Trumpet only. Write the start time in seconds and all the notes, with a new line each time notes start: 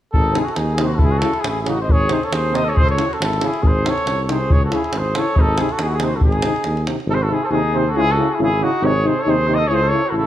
0.15 D#4
0.35 E4
0.44 F#4
0.55 D#4
0.75 G#4
0.87 F#4
0.99 E4
1.12 F#4
1.34 E4
1.44 E4
1.60 E4
1.68 D#4
1.81 C5
1.92 G#4
2.12 G#4
2.24 A4
2.33 G#4
2.55 C5
2.65 A4
2.74 G#4
2.85 A4
3.08 F#4
3.20 E4
3.41 E4
3.63 G#4
3.85 A4
4.22 A4
4.32 G#4
4.54 G#4
4.63 F#4
4.73 E4
4.98 G#4
5.15 A4
5.37 D#4
5.60 E4
5.72 F#4
5.81 D#4
5.92 E4
5.96 G#4
6.09 F#4
6.21 D#4
7.10 D#4
7.14 G#4
7.20 F#4
7.30 E4
7.44 G#4
7.51 F#4
7.55 D#4
7.79 G#4
7.90 F#4
8.02 E4
8.12 F#4
8.35 E4
8.64 D#4
8.86 G#4
9.09 G#4
9.19 A4
9.27 G#4
9.47 C5
9.58 A4
9.70 G#4
9.83 A4
10.06 F#4
10.16 E4